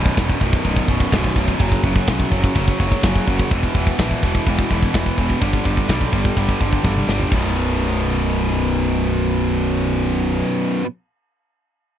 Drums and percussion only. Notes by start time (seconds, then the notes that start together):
0.06 kick
0.17 kick, snare, ride bell
0.29 kick
0.41 kick
0.53 kick
0.65 kick, ride bell
0.76 kick
0.88 kick
1.00 kick
1.12 kick, snare, ride bell
1.24 kick
1.36 kick
1.48 kick
1.60 kick, ride bell
1.72 kick
1.84 kick
1.96 kick
2.07 kick, snare, ride bell
2.20 kick
2.32 kick
2.44 kick
2.55 kick, ride bell
2.68 kick
2.80 kick
2.92 kick
3.03 kick, snare, ride bell
3.15 kick
3.28 kick
3.39 kick
3.51 kick, ride bell
3.63 kick
3.75 kick
3.87 kick
3.99 kick, snare, ride bell
4.11 kick
4.23 kick
4.35 kick
4.47 kick, ride bell
4.59 kick
4.71 kick
4.82 kick
4.94 kick, snare, ride bell
5.06 kick
5.18 kick
5.30 kick
5.42 kick, ride bell
5.53 kick
5.65 kick
5.77 kick
5.89 kick, snare, ride bell
6.01 kick
6.13 kick
6.25 kick
6.37 kick, ride bell
6.49 kick
6.61 kick
6.73 kick
6.84 kick, high tom
6.97 mid tom
7.09 snare
7.20 floor tom
7.32 kick, crash